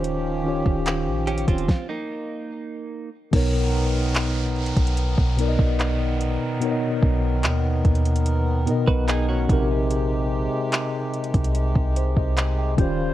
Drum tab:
CC |--------------------------------|x-------------------------------|--------------------------------|--------------------------------|
HH |x-------x---xxxx----------------|x-------x---xxxxx---x---x---x---|x-------x---xxxxx---x---x---x---|x-------x---xxxxx---x---x---x---|
CP |--------x-----------------------|--------x---------------x-------|--------x---------------x-------|--------x---------------x-------|
SD |----------------o---------------|--------------------------------|--------------------------------|--------------------------------|
BD |------o-------o-o---------------|o-------------o---o---o---------|----o-------o---------o-----o---|--------------o---o---o-----o---|